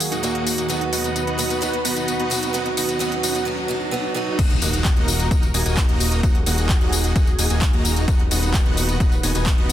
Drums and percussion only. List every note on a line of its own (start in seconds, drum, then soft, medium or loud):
0.00 open hi-hat loud
0.00 tambourine medium
0.12 closed hi-hat medium
0.12 tambourine soft
0.23 closed hi-hat medium
0.23 tambourine soft
0.35 closed hi-hat soft
0.47 open hi-hat medium
0.47 tambourine medium
0.58 closed hi-hat soft
0.58 tambourine soft
0.70 closed hi-hat soft
0.70 tambourine soft
0.81 closed hi-hat soft
0.93 open hi-hat loud
0.93 tambourine medium
1.04 closed hi-hat soft
1.04 tambourine soft
1.16 closed hi-hat soft
1.16 tambourine soft
1.27 closed hi-hat soft
1.39 open hi-hat medium
1.39 tambourine medium
1.50 closed hi-hat soft
1.50 tambourine soft
1.62 closed hi-hat soft
1.62 tambourine soft
1.73 closed hi-hat soft
1.85 open hi-hat loud
1.85 tambourine medium
1.96 closed hi-hat soft
1.96 tambourine soft
2.08 closed hi-hat soft
2.08 tambourine soft
2.20 closed hi-hat soft
2.31 open hi-hat loud
2.31 tambourine medium
2.43 closed hi-hat soft
2.43 tambourine soft
2.54 closed hi-hat medium
2.54 tambourine soft
2.66 closed hi-hat soft
2.77 open hi-hat loud
2.77 tambourine medium
2.89 closed hi-hat soft
2.89 tambourine soft
3.00 closed hi-hat soft
3.00 tambourine soft
3.12 closed hi-hat soft
3.23 open hi-hat medium
3.23 tambourine medium
3.35 closed hi-hat soft
3.35 tambourine soft
4.39 kick loud
4.39 closed hi-hat medium
4.39 crash loud
4.39 tambourine soft
4.50 closed hi-hat soft
4.62 open hi-hat loud
4.62 tambourine medium
4.73 closed hi-hat medium
4.73 tambourine soft
4.85 kick loud
4.85 clap loud
4.85 closed hi-hat medium
4.85 tambourine soft
4.96 closed hi-hat soft
5.08 open hi-hat medium
5.08 tambourine medium
5.20 closed hi-hat medium
5.20 tambourine soft
5.31 kick loud
5.31 closed hi-hat medium
5.31 tambourine soft
5.43 closed hi-hat soft
5.43 tambourine soft
5.54 open hi-hat loud
5.54 tambourine medium
5.66 closed hi-hat medium
5.66 tambourine soft
5.77 kick loud
5.77 clap loud
5.77 closed hi-hat medium
5.77 tambourine soft
5.89 closed hi-hat soft
6.00 open hi-hat medium
6.00 tambourine medium
6.12 closed hi-hat medium
6.12 tambourine soft
6.23 kick loud
6.23 closed hi-hat medium
6.23 tambourine soft
6.35 closed hi-hat soft
6.46 open hi-hat loud
6.46 tambourine medium
6.58 closed hi-hat medium
6.58 tambourine soft
6.69 kick loud
6.69 clap loud
6.69 closed hi-hat medium
6.69 tambourine soft
6.81 closed hi-hat soft
6.92 open hi-hat medium
6.92 tambourine medium
7.04 closed hi-hat medium
7.04 tambourine soft
7.16 kick loud
7.16 closed hi-hat medium
7.16 tambourine soft
7.27 closed hi-hat soft
7.27 tambourine soft
7.39 open hi-hat loud
7.39 tambourine medium
7.50 closed hi-hat medium
7.50 tambourine soft
7.62 kick loud
7.62 clap loud
7.62 closed hi-hat medium
7.62 tambourine soft
7.73 closed hi-hat soft
7.85 open hi-hat loud
7.85 tambourine medium
7.96 closed hi-hat medium
7.96 tambourine soft
8.08 kick loud
8.08 closed hi-hat medium
8.08 tambourine soft
8.19 closed hi-hat soft
8.31 open hi-hat loud
8.31 tambourine medium
8.43 closed hi-hat medium
8.43 tambourine soft
8.54 kick loud
8.54 clap loud
8.54 closed hi-hat soft
8.54 tambourine soft
8.66 closed hi-hat soft
8.77 open hi-hat loud
8.77 tambourine medium
8.89 closed hi-hat medium
8.89 tambourine soft
9.00 kick loud
9.00 closed hi-hat soft
9.00 tambourine soft
9.12 closed hi-hat soft
9.12 tambourine soft
9.23 open hi-hat loud
9.23 tambourine medium
9.35 closed hi-hat soft
9.35 tambourine soft
9.46 kick loud
9.46 clap loud
9.46 closed hi-hat soft
9.46 tambourine soft
9.58 closed hi-hat soft